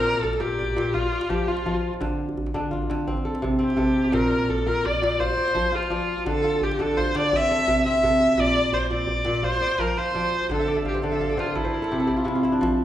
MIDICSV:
0, 0, Header, 1, 4, 480
1, 0, Start_track
1, 0, Key_signature, -1, "major"
1, 0, Tempo, 353774
1, 2737, Time_signature, 12, 3, 24, 8
1, 17428, End_track
2, 0, Start_track
2, 0, Title_t, "Viola"
2, 0, Program_c, 0, 41
2, 0, Note_on_c, 0, 70, 107
2, 308, Note_on_c, 0, 69, 86
2, 329, Note_off_c, 0, 70, 0
2, 551, Note_on_c, 0, 67, 86
2, 572, Note_off_c, 0, 69, 0
2, 1274, Note_on_c, 0, 65, 86
2, 1294, Note_off_c, 0, 67, 0
2, 1751, Note_on_c, 0, 67, 79
2, 1771, Note_off_c, 0, 65, 0
2, 2005, Note_on_c, 0, 65, 72
2, 2026, Note_off_c, 0, 67, 0
2, 2551, Note_off_c, 0, 65, 0
2, 4912, Note_on_c, 0, 67, 81
2, 5609, Note_on_c, 0, 70, 92
2, 5629, Note_off_c, 0, 67, 0
2, 6102, Note_on_c, 0, 69, 79
2, 6122, Note_off_c, 0, 70, 0
2, 6335, Note_on_c, 0, 70, 91
2, 6356, Note_off_c, 0, 69, 0
2, 6589, Note_on_c, 0, 74, 84
2, 6609, Note_off_c, 0, 70, 0
2, 7055, Note_on_c, 0, 72, 97
2, 7076, Note_off_c, 0, 74, 0
2, 7804, Note_on_c, 0, 65, 85
2, 7825, Note_off_c, 0, 72, 0
2, 8502, Note_off_c, 0, 65, 0
2, 8510, Note_on_c, 0, 69, 104
2, 8999, Note_on_c, 0, 67, 85
2, 9019, Note_off_c, 0, 69, 0
2, 9244, Note_on_c, 0, 69, 95
2, 9265, Note_off_c, 0, 67, 0
2, 9460, Note_on_c, 0, 72, 87
2, 9480, Note_off_c, 0, 69, 0
2, 9715, Note_on_c, 0, 74, 99
2, 9735, Note_off_c, 0, 72, 0
2, 9978, Note_on_c, 0, 76, 109
2, 9999, Note_off_c, 0, 74, 0
2, 10654, Note_off_c, 0, 76, 0
2, 10662, Note_on_c, 0, 76, 101
2, 11389, Note_on_c, 0, 74, 109
2, 11409, Note_off_c, 0, 76, 0
2, 11855, Note_on_c, 0, 72, 90
2, 11875, Note_off_c, 0, 74, 0
2, 12081, Note_off_c, 0, 72, 0
2, 12089, Note_on_c, 0, 74, 90
2, 12810, Note_on_c, 0, 72, 100
2, 12830, Note_off_c, 0, 74, 0
2, 13300, Note_on_c, 0, 70, 83
2, 13320, Note_off_c, 0, 72, 0
2, 13542, Note_on_c, 0, 72, 90
2, 13563, Note_off_c, 0, 70, 0
2, 14258, Note_off_c, 0, 72, 0
2, 14271, Note_on_c, 0, 69, 97
2, 14709, Note_off_c, 0, 69, 0
2, 14762, Note_on_c, 0, 67, 70
2, 14972, Note_off_c, 0, 67, 0
2, 14988, Note_on_c, 0, 69, 88
2, 15464, Note_on_c, 0, 65, 77
2, 15484, Note_off_c, 0, 69, 0
2, 15677, Note_on_c, 0, 64, 75
2, 15697, Note_off_c, 0, 65, 0
2, 16881, Note_off_c, 0, 64, 0
2, 17428, End_track
3, 0, Start_track
3, 0, Title_t, "Kora"
3, 0, Program_c, 1, 46
3, 0, Note_on_c, 1, 46, 82
3, 0, Note_on_c, 1, 60, 67
3, 0, Note_on_c, 1, 69, 62
3, 68, Note_on_c, 1, 74, 63
3, 526, Note_off_c, 1, 46, 0
3, 541, Note_on_c, 1, 46, 69
3, 543, Note_on_c, 1, 70, 65
3, 623, Note_off_c, 1, 69, 0
3, 791, Note_off_c, 1, 74, 0
3, 797, Note_on_c, 1, 74, 64
3, 1022, Note_off_c, 1, 46, 0
3, 1038, Note_on_c, 1, 46, 77
3, 1279, Note_on_c, 1, 65, 69
3, 1359, Note_off_c, 1, 46, 0
3, 1513, Note_off_c, 1, 74, 0
3, 1518, Note_on_c, 1, 74, 63
3, 1565, Note_off_c, 1, 60, 0
3, 1759, Note_on_c, 1, 53, 77
3, 2001, Note_off_c, 1, 65, 0
3, 2006, Note_on_c, 1, 65, 67
3, 2232, Note_off_c, 1, 53, 0
3, 2248, Note_on_c, 1, 53, 73
3, 2270, Note_off_c, 1, 70, 0
3, 2722, Note_on_c, 1, 50, 79
3, 2804, Note_off_c, 1, 53, 0
3, 3022, Note_off_c, 1, 74, 0
3, 3434, Note_off_c, 1, 50, 0
3, 3450, Note_on_c, 1, 50, 74
3, 3452, Note_on_c, 1, 62, 61
3, 3671, Note_off_c, 1, 65, 0
3, 3677, Note_on_c, 1, 65, 59
3, 3914, Note_off_c, 1, 50, 0
3, 3930, Note_on_c, 1, 50, 71
3, 4171, Note_on_c, 1, 60, 67
3, 4247, Note_off_c, 1, 50, 0
3, 4408, Note_on_c, 1, 69, 58
3, 4643, Note_on_c, 1, 48, 77
3, 4862, Note_off_c, 1, 60, 0
3, 4867, Note_on_c, 1, 60, 64
3, 5095, Note_off_c, 1, 48, 0
3, 5110, Note_off_c, 1, 69, 0
3, 5110, Note_on_c, 1, 48, 72
3, 5116, Note_on_c, 1, 69, 60
3, 5594, Note_on_c, 1, 46, 82
3, 5689, Note_off_c, 1, 48, 0
3, 5730, Note_off_c, 1, 62, 0
3, 5730, Note_off_c, 1, 65, 0
3, 5835, Note_on_c, 1, 74, 61
3, 6315, Note_off_c, 1, 46, 0
3, 6330, Note_on_c, 1, 46, 68
3, 6330, Note_on_c, 1, 70, 59
3, 6411, Note_off_c, 1, 69, 0
3, 6569, Note_off_c, 1, 74, 0
3, 6574, Note_on_c, 1, 74, 61
3, 6795, Note_off_c, 1, 46, 0
3, 6812, Note_on_c, 1, 46, 73
3, 7057, Note_on_c, 1, 65, 67
3, 7130, Note_off_c, 1, 46, 0
3, 7283, Note_off_c, 1, 74, 0
3, 7288, Note_on_c, 1, 74, 64
3, 7310, Note_off_c, 1, 60, 0
3, 7523, Note_on_c, 1, 53, 73
3, 7757, Note_off_c, 1, 65, 0
3, 7762, Note_on_c, 1, 65, 66
3, 7992, Note_off_c, 1, 53, 0
3, 8007, Note_off_c, 1, 74, 0
3, 8007, Note_on_c, 1, 53, 70
3, 8013, Note_on_c, 1, 74, 62
3, 8057, Note_off_c, 1, 70, 0
3, 8493, Note_on_c, 1, 50, 82
3, 8570, Note_off_c, 1, 53, 0
3, 8724, Note_off_c, 1, 65, 0
3, 8730, Note_on_c, 1, 65, 66
3, 9196, Note_off_c, 1, 50, 0
3, 9211, Note_on_c, 1, 50, 68
3, 9214, Note_on_c, 1, 62, 61
3, 9454, Note_off_c, 1, 65, 0
3, 9459, Note_on_c, 1, 65, 60
3, 9516, Note_off_c, 1, 74, 0
3, 9688, Note_off_c, 1, 50, 0
3, 9704, Note_on_c, 1, 50, 74
3, 9945, Note_on_c, 1, 60, 69
3, 10010, Note_off_c, 1, 50, 0
3, 10189, Note_on_c, 1, 69, 59
3, 10430, Note_on_c, 1, 48, 70
3, 10656, Note_off_c, 1, 60, 0
3, 10661, Note_on_c, 1, 60, 66
3, 10885, Note_off_c, 1, 48, 0
3, 10896, Note_off_c, 1, 69, 0
3, 10900, Note_on_c, 1, 48, 70
3, 10902, Note_on_c, 1, 69, 60
3, 11376, Note_on_c, 1, 46, 81
3, 11448, Note_off_c, 1, 48, 0
3, 11493, Note_off_c, 1, 62, 0
3, 11513, Note_off_c, 1, 65, 0
3, 11610, Note_on_c, 1, 74, 65
3, 12070, Note_off_c, 1, 46, 0
3, 12087, Note_on_c, 1, 46, 71
3, 12168, Note_off_c, 1, 69, 0
3, 12316, Note_off_c, 1, 74, 0
3, 12322, Note_on_c, 1, 74, 63
3, 12545, Note_off_c, 1, 46, 0
3, 12561, Note_on_c, 1, 46, 78
3, 12795, Note_on_c, 1, 65, 69
3, 12886, Note_off_c, 1, 46, 0
3, 13036, Note_off_c, 1, 74, 0
3, 13042, Note_on_c, 1, 74, 65
3, 13104, Note_off_c, 1, 60, 0
3, 13287, Note_on_c, 1, 53, 76
3, 13540, Note_off_c, 1, 65, 0
3, 13545, Note_on_c, 1, 65, 63
3, 13753, Note_off_c, 1, 53, 0
3, 13761, Note_off_c, 1, 74, 0
3, 13766, Note_on_c, 1, 74, 59
3, 13768, Note_on_c, 1, 53, 70
3, 14258, Note_on_c, 1, 50, 77
3, 14324, Note_off_c, 1, 53, 0
3, 14371, Note_on_c, 1, 76, 64
3, 14452, Note_off_c, 1, 65, 0
3, 14482, Note_off_c, 1, 74, 0
3, 14487, Note_on_c, 1, 74, 66
3, 14599, Note_off_c, 1, 76, 0
3, 14604, Note_on_c, 1, 76, 71
3, 14726, Note_on_c, 1, 77, 65
3, 14846, Note_on_c, 1, 72, 65
3, 14955, Note_off_c, 1, 50, 0
3, 14966, Note_off_c, 1, 74, 0
3, 14970, Note_on_c, 1, 50, 70
3, 14972, Note_on_c, 1, 74, 61
3, 15077, Note_off_c, 1, 76, 0
3, 15083, Note_on_c, 1, 76, 65
3, 15164, Note_off_c, 1, 77, 0
3, 15209, Note_on_c, 1, 77, 67
3, 15315, Note_off_c, 1, 74, 0
3, 15321, Note_on_c, 1, 74, 69
3, 15414, Note_off_c, 1, 50, 0
3, 15426, Note_off_c, 1, 72, 0
3, 15429, Note_on_c, 1, 50, 69
3, 15432, Note_on_c, 1, 72, 65
3, 15554, Note_on_c, 1, 70, 65
3, 15675, Note_on_c, 1, 69, 72
3, 15760, Note_off_c, 1, 50, 0
3, 15795, Note_off_c, 1, 72, 0
3, 15800, Note_on_c, 1, 72, 68
3, 15924, Note_off_c, 1, 70, 0
3, 15929, Note_on_c, 1, 70, 63
3, 16011, Note_off_c, 1, 69, 0
3, 16039, Note_on_c, 1, 69, 69
3, 16165, Note_on_c, 1, 67, 63
3, 16167, Note_on_c, 1, 48, 67
3, 16275, Note_off_c, 1, 69, 0
3, 16281, Note_on_c, 1, 69, 68
3, 16362, Note_off_c, 1, 70, 0
3, 16375, Note_off_c, 1, 67, 0
3, 16381, Note_on_c, 1, 67, 64
3, 16486, Note_off_c, 1, 76, 0
3, 16508, Note_on_c, 1, 65, 68
3, 16564, Note_off_c, 1, 77, 0
3, 16605, Note_off_c, 1, 48, 0
3, 16610, Note_on_c, 1, 64, 60
3, 16622, Note_on_c, 1, 48, 72
3, 16752, Note_off_c, 1, 65, 0
3, 16758, Note_on_c, 1, 65, 66
3, 16824, Note_off_c, 1, 74, 0
3, 16861, Note_off_c, 1, 64, 0
3, 16867, Note_on_c, 1, 64, 68
3, 16987, Note_on_c, 1, 62, 68
3, 17108, Note_on_c, 1, 53, 86
3, 17190, Note_off_c, 1, 64, 0
3, 17195, Note_off_c, 1, 48, 0
3, 17411, Note_off_c, 1, 72, 0
3, 17428, Note_off_c, 1, 53, 0
3, 17428, Note_off_c, 1, 62, 0
3, 17428, Note_off_c, 1, 65, 0
3, 17428, Note_off_c, 1, 67, 0
3, 17428, Note_off_c, 1, 69, 0
3, 17428, End_track
4, 0, Start_track
4, 0, Title_t, "Djembe"
4, 207, Note_on_c, 9, 63, 46
4, 322, Note_on_c, 9, 64, 68
4, 343, Note_off_c, 9, 63, 0
4, 450, Note_on_c, 9, 62, 49
4, 458, Note_off_c, 9, 64, 0
4, 573, Note_off_c, 9, 62, 0
4, 573, Note_on_c, 9, 62, 18
4, 573, Note_on_c, 9, 63, 62
4, 703, Note_off_c, 9, 62, 0
4, 703, Note_on_c, 9, 62, 20
4, 709, Note_off_c, 9, 63, 0
4, 828, Note_on_c, 9, 64, 66
4, 838, Note_off_c, 9, 62, 0
4, 949, Note_on_c, 9, 63, 48
4, 964, Note_off_c, 9, 64, 0
4, 1059, Note_on_c, 9, 62, 60
4, 1085, Note_off_c, 9, 63, 0
4, 1195, Note_off_c, 9, 62, 0
4, 1295, Note_on_c, 9, 64, 60
4, 1418, Note_on_c, 9, 63, 52
4, 1431, Note_off_c, 9, 64, 0
4, 1523, Note_on_c, 9, 62, 21
4, 1553, Note_off_c, 9, 63, 0
4, 1643, Note_off_c, 9, 62, 0
4, 1643, Note_on_c, 9, 62, 55
4, 1772, Note_off_c, 9, 62, 0
4, 1772, Note_on_c, 9, 62, 20
4, 1772, Note_on_c, 9, 63, 66
4, 1772, Note_on_c, 9, 64, 65
4, 1908, Note_off_c, 9, 62, 0
4, 1908, Note_off_c, 9, 63, 0
4, 1908, Note_off_c, 9, 64, 0
4, 2126, Note_on_c, 9, 62, 47
4, 2260, Note_on_c, 9, 63, 65
4, 2260, Note_on_c, 9, 64, 57
4, 2262, Note_off_c, 9, 62, 0
4, 2396, Note_off_c, 9, 63, 0
4, 2396, Note_off_c, 9, 64, 0
4, 2625, Note_on_c, 9, 63, 50
4, 2734, Note_on_c, 9, 62, 67
4, 2734, Note_on_c, 9, 64, 62
4, 2760, Note_off_c, 9, 63, 0
4, 2869, Note_off_c, 9, 62, 0
4, 2869, Note_off_c, 9, 64, 0
4, 3104, Note_on_c, 9, 62, 20
4, 3104, Note_on_c, 9, 63, 49
4, 3220, Note_on_c, 9, 64, 68
4, 3240, Note_off_c, 9, 62, 0
4, 3240, Note_off_c, 9, 63, 0
4, 3343, Note_on_c, 9, 62, 53
4, 3356, Note_off_c, 9, 64, 0
4, 3475, Note_off_c, 9, 62, 0
4, 3475, Note_on_c, 9, 62, 20
4, 3475, Note_on_c, 9, 63, 65
4, 3611, Note_off_c, 9, 62, 0
4, 3611, Note_off_c, 9, 63, 0
4, 3705, Note_on_c, 9, 62, 20
4, 3705, Note_on_c, 9, 64, 64
4, 3829, Note_on_c, 9, 63, 54
4, 3841, Note_off_c, 9, 62, 0
4, 3841, Note_off_c, 9, 64, 0
4, 3946, Note_on_c, 9, 62, 66
4, 3964, Note_off_c, 9, 63, 0
4, 4071, Note_off_c, 9, 62, 0
4, 4071, Note_on_c, 9, 62, 21
4, 4178, Note_on_c, 9, 64, 60
4, 4207, Note_off_c, 9, 62, 0
4, 4303, Note_on_c, 9, 63, 57
4, 4314, Note_off_c, 9, 64, 0
4, 4438, Note_off_c, 9, 63, 0
4, 4542, Note_on_c, 9, 62, 55
4, 4670, Note_off_c, 9, 62, 0
4, 4670, Note_on_c, 9, 62, 22
4, 4670, Note_on_c, 9, 63, 68
4, 4670, Note_on_c, 9, 64, 67
4, 4806, Note_off_c, 9, 62, 0
4, 4806, Note_off_c, 9, 63, 0
4, 4806, Note_off_c, 9, 64, 0
4, 5022, Note_on_c, 9, 62, 50
4, 5140, Note_on_c, 9, 63, 65
4, 5140, Note_on_c, 9, 64, 65
4, 5157, Note_off_c, 9, 62, 0
4, 5275, Note_off_c, 9, 63, 0
4, 5275, Note_off_c, 9, 64, 0
4, 5374, Note_on_c, 9, 62, 22
4, 5492, Note_on_c, 9, 63, 58
4, 5510, Note_off_c, 9, 62, 0
4, 5608, Note_on_c, 9, 62, 71
4, 5608, Note_on_c, 9, 64, 68
4, 5628, Note_off_c, 9, 63, 0
4, 5743, Note_off_c, 9, 62, 0
4, 5743, Note_off_c, 9, 64, 0
4, 5847, Note_on_c, 9, 62, 21
4, 5980, Note_on_c, 9, 63, 53
4, 5983, Note_off_c, 9, 62, 0
4, 6096, Note_on_c, 9, 64, 74
4, 6116, Note_off_c, 9, 63, 0
4, 6217, Note_on_c, 9, 62, 55
4, 6231, Note_off_c, 9, 64, 0
4, 6338, Note_off_c, 9, 62, 0
4, 6338, Note_on_c, 9, 62, 22
4, 6338, Note_on_c, 9, 63, 67
4, 6471, Note_off_c, 9, 62, 0
4, 6471, Note_on_c, 9, 62, 21
4, 6474, Note_off_c, 9, 63, 0
4, 6591, Note_on_c, 9, 64, 64
4, 6606, Note_off_c, 9, 62, 0
4, 6706, Note_on_c, 9, 63, 54
4, 6727, Note_off_c, 9, 64, 0
4, 6830, Note_on_c, 9, 62, 69
4, 6842, Note_off_c, 9, 63, 0
4, 6966, Note_off_c, 9, 62, 0
4, 7064, Note_on_c, 9, 64, 65
4, 7194, Note_on_c, 9, 63, 53
4, 7199, Note_off_c, 9, 64, 0
4, 7330, Note_off_c, 9, 63, 0
4, 7432, Note_on_c, 9, 62, 56
4, 7546, Note_off_c, 9, 62, 0
4, 7546, Note_on_c, 9, 62, 22
4, 7546, Note_on_c, 9, 63, 70
4, 7546, Note_on_c, 9, 64, 67
4, 7682, Note_off_c, 9, 62, 0
4, 7682, Note_off_c, 9, 63, 0
4, 7682, Note_off_c, 9, 64, 0
4, 7906, Note_on_c, 9, 62, 50
4, 8025, Note_on_c, 9, 63, 69
4, 8042, Note_off_c, 9, 62, 0
4, 8161, Note_off_c, 9, 63, 0
4, 8386, Note_on_c, 9, 63, 55
4, 8499, Note_on_c, 9, 62, 71
4, 8499, Note_on_c, 9, 64, 68
4, 8522, Note_off_c, 9, 63, 0
4, 8635, Note_off_c, 9, 62, 0
4, 8635, Note_off_c, 9, 64, 0
4, 8733, Note_on_c, 9, 62, 22
4, 8863, Note_on_c, 9, 63, 50
4, 8869, Note_off_c, 9, 62, 0
4, 8976, Note_on_c, 9, 64, 70
4, 8998, Note_off_c, 9, 63, 0
4, 9110, Note_on_c, 9, 62, 57
4, 9112, Note_off_c, 9, 64, 0
4, 9229, Note_off_c, 9, 62, 0
4, 9229, Note_on_c, 9, 62, 21
4, 9229, Note_on_c, 9, 63, 66
4, 9355, Note_off_c, 9, 62, 0
4, 9355, Note_on_c, 9, 62, 21
4, 9365, Note_off_c, 9, 63, 0
4, 9473, Note_on_c, 9, 64, 65
4, 9491, Note_off_c, 9, 62, 0
4, 9587, Note_on_c, 9, 63, 52
4, 9609, Note_off_c, 9, 64, 0
4, 9698, Note_on_c, 9, 62, 72
4, 9722, Note_off_c, 9, 63, 0
4, 9834, Note_off_c, 9, 62, 0
4, 9948, Note_on_c, 9, 64, 64
4, 10076, Note_on_c, 9, 63, 56
4, 10083, Note_off_c, 9, 64, 0
4, 10194, Note_on_c, 9, 62, 23
4, 10211, Note_off_c, 9, 63, 0
4, 10311, Note_off_c, 9, 62, 0
4, 10311, Note_on_c, 9, 62, 57
4, 10418, Note_off_c, 9, 62, 0
4, 10418, Note_on_c, 9, 62, 22
4, 10418, Note_on_c, 9, 63, 71
4, 10418, Note_on_c, 9, 64, 73
4, 10553, Note_off_c, 9, 62, 0
4, 10553, Note_off_c, 9, 63, 0
4, 10553, Note_off_c, 9, 64, 0
4, 10774, Note_on_c, 9, 62, 53
4, 10899, Note_on_c, 9, 63, 63
4, 10899, Note_on_c, 9, 64, 69
4, 10910, Note_off_c, 9, 62, 0
4, 11035, Note_off_c, 9, 63, 0
4, 11035, Note_off_c, 9, 64, 0
4, 11244, Note_on_c, 9, 63, 60
4, 11364, Note_on_c, 9, 62, 75
4, 11364, Note_on_c, 9, 64, 74
4, 11380, Note_off_c, 9, 63, 0
4, 11499, Note_off_c, 9, 62, 0
4, 11499, Note_off_c, 9, 64, 0
4, 11608, Note_on_c, 9, 62, 22
4, 11728, Note_on_c, 9, 63, 50
4, 11743, Note_off_c, 9, 62, 0
4, 11842, Note_on_c, 9, 64, 80
4, 11863, Note_off_c, 9, 63, 0
4, 11964, Note_on_c, 9, 62, 55
4, 11978, Note_off_c, 9, 64, 0
4, 12082, Note_off_c, 9, 62, 0
4, 12082, Note_on_c, 9, 62, 22
4, 12082, Note_on_c, 9, 63, 66
4, 12192, Note_off_c, 9, 62, 0
4, 12192, Note_on_c, 9, 62, 22
4, 12217, Note_off_c, 9, 63, 0
4, 12309, Note_on_c, 9, 64, 69
4, 12328, Note_off_c, 9, 62, 0
4, 12445, Note_off_c, 9, 64, 0
4, 12544, Note_on_c, 9, 62, 69
4, 12680, Note_off_c, 9, 62, 0
4, 12791, Note_on_c, 9, 64, 65
4, 12911, Note_on_c, 9, 63, 57
4, 12927, Note_off_c, 9, 64, 0
4, 13039, Note_on_c, 9, 62, 21
4, 13047, Note_off_c, 9, 63, 0
4, 13159, Note_off_c, 9, 62, 0
4, 13159, Note_on_c, 9, 62, 52
4, 13279, Note_off_c, 9, 62, 0
4, 13279, Note_on_c, 9, 62, 22
4, 13279, Note_on_c, 9, 63, 66
4, 13279, Note_on_c, 9, 64, 61
4, 13414, Note_off_c, 9, 62, 0
4, 13414, Note_off_c, 9, 63, 0
4, 13414, Note_off_c, 9, 64, 0
4, 13644, Note_on_c, 9, 62, 45
4, 13764, Note_on_c, 9, 63, 59
4, 13780, Note_off_c, 9, 62, 0
4, 13899, Note_off_c, 9, 63, 0
4, 14123, Note_on_c, 9, 63, 49
4, 14240, Note_on_c, 9, 62, 65
4, 14240, Note_on_c, 9, 64, 67
4, 14259, Note_off_c, 9, 63, 0
4, 14371, Note_off_c, 9, 62, 0
4, 14371, Note_on_c, 9, 62, 20
4, 14376, Note_off_c, 9, 64, 0
4, 14506, Note_off_c, 9, 62, 0
4, 14597, Note_on_c, 9, 63, 46
4, 14723, Note_on_c, 9, 64, 66
4, 14733, Note_off_c, 9, 63, 0
4, 14842, Note_on_c, 9, 62, 51
4, 14859, Note_off_c, 9, 64, 0
4, 14956, Note_off_c, 9, 62, 0
4, 14956, Note_on_c, 9, 62, 18
4, 14956, Note_on_c, 9, 63, 59
4, 15079, Note_off_c, 9, 62, 0
4, 15079, Note_on_c, 9, 62, 18
4, 15092, Note_off_c, 9, 63, 0
4, 15205, Note_on_c, 9, 64, 60
4, 15215, Note_off_c, 9, 62, 0
4, 15327, Note_on_c, 9, 62, 19
4, 15327, Note_on_c, 9, 63, 44
4, 15341, Note_off_c, 9, 64, 0
4, 15456, Note_off_c, 9, 62, 0
4, 15456, Note_on_c, 9, 62, 60
4, 15463, Note_off_c, 9, 63, 0
4, 15591, Note_off_c, 9, 62, 0
4, 15695, Note_on_c, 9, 64, 57
4, 15821, Note_on_c, 9, 63, 49
4, 15830, Note_off_c, 9, 64, 0
4, 15957, Note_off_c, 9, 63, 0
4, 16067, Note_on_c, 9, 62, 49
4, 16179, Note_on_c, 9, 64, 37
4, 16203, Note_off_c, 9, 62, 0
4, 16315, Note_off_c, 9, 64, 0
4, 16416, Note_on_c, 9, 64, 46
4, 16552, Note_off_c, 9, 64, 0
4, 16661, Note_on_c, 9, 62, 47
4, 16797, Note_off_c, 9, 62, 0
4, 16889, Note_on_c, 9, 62, 54
4, 17025, Note_off_c, 9, 62, 0
4, 17135, Note_on_c, 9, 62, 76
4, 17135, Note_on_c, 9, 64, 76
4, 17250, Note_off_c, 9, 62, 0
4, 17250, Note_on_c, 9, 62, 23
4, 17271, Note_off_c, 9, 64, 0
4, 17366, Note_off_c, 9, 62, 0
4, 17366, Note_on_c, 9, 62, 25
4, 17428, Note_off_c, 9, 62, 0
4, 17428, End_track
0, 0, End_of_file